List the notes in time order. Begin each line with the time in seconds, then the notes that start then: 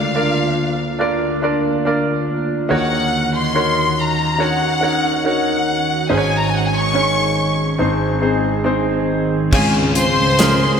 Already playing: D2 D3 A#3 D4 F4 A#4 D5 F5
0.15 D4 F4 A#4 D5
0.99 D4 F4 A#4 D5
1.42 D4 F4 A#4 D5
1.85 D4 F4 A#4 D5
2.69 D#2 D#3 C#4 D#4 F#4 A#4 C#5 F#5
3.36 C6
3.54 D#4 F#4 A#4 C#5
4.01 A#5
4.38 D#4 F#4 A#4 C#5 F#5
4.81 D#4 F#4 A#4 C#5
5.24 D#4 F#4 A#4 C#5 F#5
6.09 G#1 G#2 C#4 D#4 G#4 C5 G#5
6.17 C#5
6.37 A#5
6.47 G#5
6.57 F#5
6.66 G#5
6.76 C#6
6.94 C#4 D#4 G#4 C#5
7.78 G#1 G#2 C4 D#4 G#4 C5
8.21 C4 D#4 G#4 C5
8.64 C4 D#4 G#4 C5
9.52 C#2 C#3 C#4 F4 G#4 F5 G#5, kick, crash
9.95 F4 C5 C6, closed hi-hat
10.18 C#2
10.39 C#4 F4 G#4 A#4, snare, closed hi-hat
10.77 C6